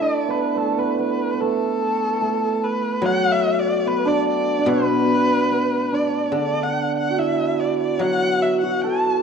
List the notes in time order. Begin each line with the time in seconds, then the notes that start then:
Already playing: A3 E4
0.01 D4 D5
0.28 B3 B4
0.56 A3 A4
0.78 B3 B4
0.99 B3 B4
1.33 B3
1.41 A3 A4
2.22 A3
2.64 B4
3.02 F#3 F#4 F#5
3.32 E5
3.59 D5
3.86 B3 B4
4.05 D4 D5
4.29 D5
4.59 D4
4.66 B2 B3 B4
5.51 B3
5.92 D4 D5
6.32 D3 D4 D5
6.63 F#5
6.97 F#5
7.10 F#4
7.18 E4 E5
7.60 D5
7.80 D5
7.99 F#3 F#4 F#5
8.42 E5
8.61 F#4 F#5
8.82 A4 A5